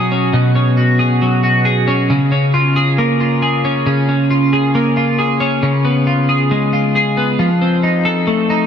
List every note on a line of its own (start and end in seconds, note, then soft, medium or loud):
0.00 0.32 B2 medium
0.00 1.21 F#3 medium
0.00 0.11 C#4 soft
0.00 0.76 F#4 medium
0.00 0.99 G#4 medium
0.12 0.55 C#4 soft
0.33 2.19 B2 medium
0.55 1.87 C#4 soft
0.77 1.42 F#4 soft
0.99 1.65 G#4 medium
1.22 2.19 F#3 medium
1.44 2.19 F#4 medium
1.65 2.76 G#4 medium
1.88 2.31 C#4 medium
2.10 3.85 C#3 medium
2.32 3.64 C#4 soft
2.54 3.20 F4 medium
2.76 3.42 G#4 medium
2.98 4.74 A#3 medium
3.21 4.30 F4 soft
3.42 4.53 G#4 medium
3.65 4.08 C#4 medium
3.87 5.62 C#3 medium
4.09 5.39 C#4 soft
4.31 4.97 F4 soft
4.53 5.18 G#4 medium
4.75 5.72 A#3 medium
4.97 5.88 F4 medium
5.19 5.72 G#4 soft
5.40 5.72 C#4 medium
5.63 7.39 C#3 medium
5.85 7.16 B3 soft
6.07 6.73 F4 soft
6.29 6.94 G#4 medium
6.51 7.48 G#3 medium
6.73 7.83 F4 soft
6.95 7.48 G#4 medium
7.17 7.48 B3 soft
7.39 8.67 F3 medium
7.62 8.67 C4 soft
7.83 8.49 D#4 soft
8.05 8.67 A4 medium
8.27 8.67 A3 medium
8.50 8.67 D#4 medium